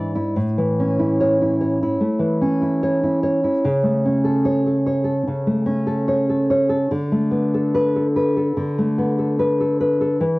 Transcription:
0, 0, Header, 1, 2, 480
1, 0, Start_track
1, 0, Key_signature, 3, "major"
1, 0, Tempo, 834492
1, 220, Time_signature, 4, 2, 24, 8
1, 698, Tempo, 810811
1, 4058, Tempo, 829876
1, 6084, End_track
2, 0, Start_track
2, 0, Title_t, "Nylon-string guitar"
2, 0, Program_c, 0, 24
2, 0, Note_on_c, 0, 44, 55
2, 0, Note_on_c, 0, 52, 53
2, 0, Note_on_c, 0, 62, 54
2, 0, Note_on_c, 0, 64, 52
2, 0, Note_on_c, 0, 74, 56
2, 81, Note_off_c, 0, 64, 0
2, 88, Note_on_c, 0, 64, 57
2, 98, Note_off_c, 0, 52, 0
2, 196, Note_off_c, 0, 44, 0
2, 207, Note_on_c, 0, 45, 67
2, 213, Note_off_c, 0, 74, 0
2, 215, Note_off_c, 0, 62, 0
2, 215, Note_off_c, 0, 64, 0
2, 333, Note_on_c, 0, 52, 50
2, 458, Note_on_c, 0, 61, 50
2, 572, Note_on_c, 0, 64, 52
2, 692, Note_on_c, 0, 73, 67
2, 811, Note_off_c, 0, 64, 0
2, 818, Note_on_c, 0, 64, 43
2, 887, Note_off_c, 0, 73, 0
2, 932, Note_on_c, 0, 73, 53
2, 1052, Note_off_c, 0, 52, 0
2, 1055, Note_off_c, 0, 64, 0
2, 1062, Note_on_c, 0, 64, 56
2, 1145, Note_off_c, 0, 45, 0
2, 1166, Note_on_c, 0, 57, 49
2, 1173, Note_off_c, 0, 61, 0
2, 1277, Note_on_c, 0, 52, 49
2, 1409, Note_on_c, 0, 61, 51
2, 1523, Note_off_c, 0, 64, 0
2, 1530, Note_on_c, 0, 64, 54
2, 1646, Note_off_c, 0, 73, 0
2, 1654, Note_on_c, 0, 73, 63
2, 1768, Note_off_c, 0, 64, 0
2, 1775, Note_on_c, 0, 64, 48
2, 1885, Note_off_c, 0, 73, 0
2, 1889, Note_off_c, 0, 57, 0
2, 1892, Note_on_c, 0, 73, 61
2, 2008, Note_off_c, 0, 52, 0
2, 2009, Note_off_c, 0, 64, 0
2, 2016, Note_on_c, 0, 64, 56
2, 2135, Note_off_c, 0, 61, 0
2, 2135, Note_off_c, 0, 73, 0
2, 2136, Note_off_c, 0, 64, 0
2, 2138, Note_on_c, 0, 49, 75
2, 2249, Note_on_c, 0, 57, 53
2, 2379, Note_on_c, 0, 61, 51
2, 2492, Note_on_c, 0, 69, 51
2, 2614, Note_on_c, 0, 73, 76
2, 2734, Note_off_c, 0, 69, 0
2, 2741, Note_on_c, 0, 69, 43
2, 2804, Note_off_c, 0, 73, 0
2, 2860, Note_on_c, 0, 73, 57
2, 2957, Note_off_c, 0, 69, 0
2, 2964, Note_on_c, 0, 69, 53
2, 2968, Note_off_c, 0, 57, 0
2, 3070, Note_off_c, 0, 49, 0
2, 3095, Note_off_c, 0, 61, 0
2, 3102, Note_on_c, 0, 49, 52
2, 3217, Note_on_c, 0, 57, 51
2, 3330, Note_on_c, 0, 61, 57
2, 3446, Note_off_c, 0, 69, 0
2, 3453, Note_on_c, 0, 69, 52
2, 3571, Note_off_c, 0, 73, 0
2, 3578, Note_on_c, 0, 73, 59
2, 3699, Note_off_c, 0, 69, 0
2, 3706, Note_on_c, 0, 69, 49
2, 3821, Note_off_c, 0, 73, 0
2, 3828, Note_on_c, 0, 73, 57
2, 3935, Note_off_c, 0, 69, 0
2, 3941, Note_off_c, 0, 57, 0
2, 3942, Note_on_c, 0, 69, 55
2, 4042, Note_off_c, 0, 49, 0
2, 4058, Note_off_c, 0, 61, 0
2, 4062, Note_off_c, 0, 69, 0
2, 4066, Note_off_c, 0, 73, 0
2, 4070, Note_on_c, 0, 50, 74
2, 4191, Note_on_c, 0, 57, 52
2, 4302, Note_on_c, 0, 59, 53
2, 4435, Note_on_c, 0, 69, 53
2, 4553, Note_on_c, 0, 71, 69
2, 4670, Note_off_c, 0, 69, 0
2, 4677, Note_on_c, 0, 69, 48
2, 4737, Note_off_c, 0, 71, 0
2, 4793, Note_on_c, 0, 71, 54
2, 4902, Note_off_c, 0, 57, 0
2, 4906, Note_off_c, 0, 69, 0
2, 4913, Note_on_c, 0, 69, 57
2, 4997, Note_off_c, 0, 50, 0
2, 5017, Note_off_c, 0, 59, 0
2, 5029, Note_on_c, 0, 50, 57
2, 5154, Note_on_c, 0, 57, 50
2, 5268, Note_on_c, 0, 59, 53
2, 5381, Note_off_c, 0, 69, 0
2, 5388, Note_on_c, 0, 69, 50
2, 5499, Note_off_c, 0, 71, 0
2, 5503, Note_off_c, 0, 59, 0
2, 5506, Note_on_c, 0, 71, 59
2, 5621, Note_off_c, 0, 69, 0
2, 5628, Note_on_c, 0, 69, 48
2, 5738, Note_off_c, 0, 71, 0
2, 5744, Note_on_c, 0, 71, 53
2, 5855, Note_off_c, 0, 69, 0
2, 5861, Note_on_c, 0, 69, 57
2, 5870, Note_off_c, 0, 57, 0
2, 5964, Note_off_c, 0, 50, 0
2, 5976, Note_on_c, 0, 52, 71
2, 5981, Note_off_c, 0, 69, 0
2, 5983, Note_off_c, 0, 71, 0
2, 6084, Note_off_c, 0, 52, 0
2, 6084, End_track
0, 0, End_of_file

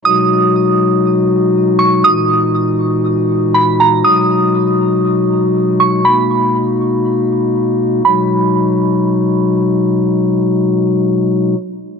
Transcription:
0, 0, Header, 1, 3, 480
1, 0, Start_track
1, 0, Key_signature, 5, "major"
1, 0, Tempo, 500000
1, 11517, End_track
2, 0, Start_track
2, 0, Title_t, "Synth bell"
2, 0, Program_c, 0, 98
2, 50, Note_on_c, 0, 87, 96
2, 1690, Note_off_c, 0, 87, 0
2, 1717, Note_on_c, 0, 85, 79
2, 1950, Note_off_c, 0, 85, 0
2, 1960, Note_on_c, 0, 87, 99
2, 2415, Note_off_c, 0, 87, 0
2, 3402, Note_on_c, 0, 83, 73
2, 3633, Note_off_c, 0, 83, 0
2, 3648, Note_on_c, 0, 82, 75
2, 3876, Note_off_c, 0, 82, 0
2, 3883, Note_on_c, 0, 87, 93
2, 5527, Note_off_c, 0, 87, 0
2, 5568, Note_on_c, 0, 85, 73
2, 5796, Note_off_c, 0, 85, 0
2, 5806, Note_on_c, 0, 83, 84
2, 6258, Note_off_c, 0, 83, 0
2, 7727, Note_on_c, 0, 83, 81
2, 9129, Note_off_c, 0, 83, 0
2, 11517, End_track
3, 0, Start_track
3, 0, Title_t, "Pipe organ"
3, 0, Program_c, 1, 19
3, 47, Note_on_c, 1, 54, 60
3, 47, Note_on_c, 1, 56, 59
3, 47, Note_on_c, 1, 63, 58
3, 47, Note_on_c, 1, 66, 70
3, 48, Note_on_c, 1, 47, 64
3, 1948, Note_off_c, 1, 54, 0
3, 1949, Note_off_c, 1, 47, 0
3, 1969, Note_on_c, 1, 46, 63
3, 1969, Note_on_c, 1, 52, 60
3, 3869, Note_off_c, 1, 46, 0
3, 3869, Note_off_c, 1, 52, 0
3, 3885, Note_on_c, 1, 54, 59
3, 3886, Note_on_c, 1, 47, 66
3, 5769, Note_off_c, 1, 63, 0
3, 5787, Note_off_c, 1, 54, 0
3, 5807, Note_on_c, 1, 58, 60
3, 5807, Note_on_c, 1, 63, 59
3, 7688, Note_off_c, 1, 47, 0
3, 7689, Note_off_c, 1, 56, 0
3, 7689, Note_off_c, 1, 66, 0
3, 7707, Note_off_c, 1, 63, 0
3, 7708, Note_off_c, 1, 58, 0
3, 7726, Note_on_c, 1, 56, 62
3, 7726, Note_on_c, 1, 63, 61
3, 7726, Note_on_c, 1, 66, 71
3, 7727, Note_on_c, 1, 47, 64
3, 7727, Note_on_c, 1, 54, 60
3, 11088, Note_off_c, 1, 47, 0
3, 11088, Note_off_c, 1, 54, 0
3, 11088, Note_off_c, 1, 56, 0
3, 11088, Note_off_c, 1, 63, 0
3, 11088, Note_off_c, 1, 66, 0
3, 11517, End_track
0, 0, End_of_file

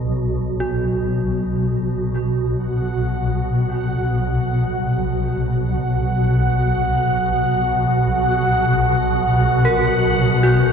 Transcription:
0, 0, Header, 1, 4, 480
1, 0, Start_track
1, 0, Tempo, 500000
1, 10296, End_track
2, 0, Start_track
2, 0, Title_t, "Synth texture"
2, 0, Program_c, 0, 99
2, 2430, Note_on_c, 0, 78, 74
2, 10296, Note_off_c, 0, 78, 0
2, 10296, End_track
3, 0, Start_track
3, 0, Title_t, "Synth bell"
3, 0, Program_c, 1, 98
3, 0, Control_c, 1, 64, 127
3, 577, Note_on_c, 1, 66, 48
3, 2264, Note_off_c, 1, 66, 0
3, 2459, Control_c, 1, 64, 0
3, 2636, Control_c, 1, 64, 127
3, 9262, Note_on_c, 1, 70, 67
3, 10015, Note_on_c, 1, 66, 73
3, 10209, Note_off_c, 1, 70, 0
3, 10296, Note_off_c, 1, 66, 0
3, 10296, End_track
4, 0, Start_track
4, 0, Title_t, "Synth drone"
4, 0, Program_c, 2, 95
4, 0, Note_on_c, 2, 35, 66
4, 0, Note_on_c, 2, 47, 75
4, 2444, Note_off_c, 2, 35, 0
4, 2450, Note_off_c, 2, 47, 0
4, 2455, Note_on_c, 2, 35, 75
4, 2461, Note_on_c, 2, 47, 78
4, 10296, Note_off_c, 2, 35, 0
4, 10296, Note_off_c, 2, 47, 0
4, 10296, End_track
0, 0, End_of_file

